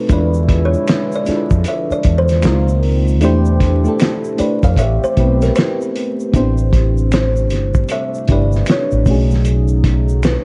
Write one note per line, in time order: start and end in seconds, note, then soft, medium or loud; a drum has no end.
0.00 0.11 A3 medium
0.00 0.11 C4 medium
0.00 0.11 D#4 medium
0.00 0.12 F#4 medium
0.00 0.11 B4 medium
0.08 0.74 E2 medium
0.08 2.01 B2 medium
0.08 2.41 D3 medium
0.08 3.18 F3 medium
0.08 1.20 G#3 medium
0.08 2.41 G#3 medium
0.08 2.01 G#3 medium
0.08 1.20 D4 medium
0.08 2.01 E4 medium
0.08 1.21 E4 medium
0.08 1.21 F4 medium
0.08 kick loud
0.08 closed hi-hat medium
0.08 shaker medium
0.12 1.22 B4 loud
0.12 0.65 D5 medium
0.34 shaker soft
0.49 kick medium
0.49 snare soft
0.49 closed hi-hat medium
0.65 1.17 C#5 medium
0.74 shaker soft
0.88 finger snap medium
0.88 snare loud
0.88 closed hi-hat medium
0.88 shaker medium
1.12 1.68 D5 medium
1.12 shaker soft
1.26 2.41 G#3 medium
1.26 2.44 D4 medium
1.26 2.44 E4 medium
1.26 2.45 F4 medium
1.26 1.36 A4 medium
1.26 muted fretless electric bass stroke soft
1.26 snare soft
1.26 closed hi-hat medium
1.26 shaker soft
1.36 2.48 B4 medium
1.50 1.63 F2 medium
1.50 kick medium
1.50 shaker soft
1.64 1.94 E5 medium
1.64 closed hi-hat medium
1.64 shaker medium
1.91 2.19 D5 medium
1.91 muted fretless electric bass stroke soft
1.91 shaker soft
2.03 2.46 E2 loud
2.03 kick medium
2.03 closed hi-hat medium
2.18 4.09 C5 medium
2.28 snare soft
2.28 closed hi-hat soft
2.28 shaker soft
2.42 3.22 C#2 loud
2.42 2.82 C3 medium
2.42 3.21 D#3 medium
2.42 3.17 G#3 medium
2.42 2.82 A#3 medium
2.42 3.21 A#3 medium
2.42 3.21 C4 medium
2.42 3.18 C4 medium
2.42 3.18 D#4 medium
2.42 2.82 F4 medium
2.42 3.19 F4 medium
2.42 finger snap medium
2.42 snare loud
2.42 closed hi-hat medium
2.42 shaker medium
2.47 3.19 A#4 medium
2.68 shaker soft
2.83 open hi-hat soft
3.08 shaker soft
3.21 3.86 E2 loud
3.21 4.76 B2 medium
3.21 4.76 D3 medium
3.21 4.36 E3 medium
3.21 3.79 A3 loud
3.21 6.30 A3 medium
3.21 4.36 D4 medium
3.21 3.80 D4 loud
3.21 4.75 E4 medium
3.21 3.80 E4 loud
3.21 4.36 G4 medium
3.21 3.81 G4 loud
3.21 3.81 C5 loud
3.21 closed hi-hat medium
3.21 shaker medium
3.45 shaker soft
3.60 kick medium
3.60 snare soft
3.60 closed hi-hat medium
3.84 4.35 A3 medium
3.84 4.35 D4 medium
3.84 4.36 E4 medium
3.84 4.36 G4 medium
3.84 shaker soft
3.88 4.37 A4 medium
4.00 finger snap medium
4.00 snare loud
4.00 closed hi-hat medium
4.00 shaker medium
4.24 shaker soft
4.37 4.77 A3 medium
4.37 4.77 D4 medium
4.37 4.77 E4 medium
4.37 4.78 G4 medium
4.37 4.79 B4 medium
4.37 4.61 D5 medium
4.37 muted fretless electric bass stroke soft
4.37 closed hi-hat medium
4.37 shaker soft
4.63 4.75 F2 medium
4.63 4.78 F5 loud
4.63 kick medium
4.63 closed hi-hat soft
4.63 shaker soft
4.76 4.97 A1 loud
4.76 5.92 E3 medium
4.76 6.31 C4 medium
4.76 5.92 C4 medium
4.76 6.31 G4 medium
4.76 5.92 G4 medium
4.76 5.01 E5 loud
4.76 kick medium
4.76 closed hi-hat medium
4.76 shaker medium
5.03 5.43 C5 loud
5.03 muted fretless electric bass stroke soft
5.03 shaker soft
5.16 5.49 B1 loud
5.16 6.27 A3 medium
5.16 5.25 B3 medium
5.16 6.28 E4 medium
5.16 6.28 G4 medium
5.16 kick medium
5.16 closed hi-hat medium
5.20 6.31 C4 medium
5.20 6.29 B4 medium
5.42 5.57 A#4 medium
5.42 snare soft
5.42 closed hi-hat soft
5.42 shaker soft
5.56 6.30 B4 medium
5.56 finger snap medium
5.56 snare loud
5.56 closed hi-hat medium
5.56 shaker medium
5.81 shaker soft
5.96 closed hi-hat medium
6.20 shaker soft
6.32 7.51 A1 loud
6.32 9.03 C3 medium
6.32 9.03 G3 medium
6.32 9.03 A3 medium
6.32 6.41 B3 medium
6.32 7.81 D4 medium
6.32 9.03 D4 medium
6.32 7.81 E4 medium
6.32 7.82 G4 medium
6.32 kick loud
6.32 closed hi-hat medium
6.32 shaker medium
6.37 7.84 C4 medium
6.37 7.83 C5 medium
6.58 shaker soft
6.73 kick medium
6.73 snare soft
6.73 closed hi-hat medium
6.98 shaker soft
7.12 7.93 C5 medium
7.12 finger snap medium
7.12 snare loud
7.12 closed hi-hat medium
7.12 shaker medium
7.36 shaker soft
7.50 7.83 G1 medium
7.50 snare soft
7.50 closed hi-hat medium
7.50 shaker soft
7.74 kick medium
7.74 shaker soft
7.89 8.30 E5 loud
7.89 closed hi-hat medium
7.89 shaker medium
8.14 shaker soft
8.27 8.61 G1 loud
8.27 9.06 C3 medium
8.27 9.06 D4 medium
8.27 9.07 E4 medium
8.27 9.07 G4 medium
8.27 kick medium
8.27 closed hi-hat medium
8.32 9.08 B4 medium
8.32 8.49 D5 medium
8.52 snare soft
8.52 shaker soft
8.66 finger snap medium
8.66 snare loud
8.66 closed hi-hat medium
8.66 shaker medium
8.71 9.28 C#5 medium
8.91 9.04 A1 medium
8.91 shaker soft
9.05 10.35 B1 medium
9.05 10.44 C#3 medium
9.05 10.44 F#3 medium
9.05 10.44 A3 medium
9.05 10.44 C#4 medium
9.05 10.44 D#4 medium
9.05 kick medium
9.05 open hi-hat soft
9.05 shaker soft
9.09 9.15 D4 medium
9.09 10.44 F#4 medium
9.09 10.44 G#4 medium
9.15 10.44 D#4 medium
9.31 snare soft
9.31 shaker soft
9.45 closed hi-hat medium
9.45 shaker medium
9.68 shaker soft
9.84 kick medium
9.84 snare soft
9.84 closed hi-hat medium
10.09 shaker soft
10.23 10.44 B4 medium
10.23 finger snap medium
10.23 snare loud
10.23 closed hi-hat medium
10.23 shaker medium